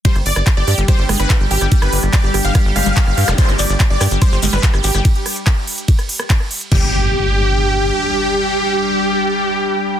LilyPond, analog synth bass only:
\new Staff \with { instrumentName = "Analog synth bass" } { \clef bass \time 4/4 \tempo 4 = 144 r16 g,,16 g,,16 g,,16 r16 g,,16 g,16 g,,16 r16 g,,16 g,,16 g,,16 r16 g,,16 aes,,16 g,,16 | r16 g,,16 g,,16 g,,16 r16 g,,16 g,,16 g,,16 r16 g,,16 g,,16 g,,16 r16 g,,16 g,16 f,,16 | r16 g,,16 g,,16 g,,16 r16 g,,16 g,16 g,,16 r16 g,,16 g,,16 g,,16 r16 g,,16 aes,,16 g,,16 | r1 |
g,,2. r4 | r1 | }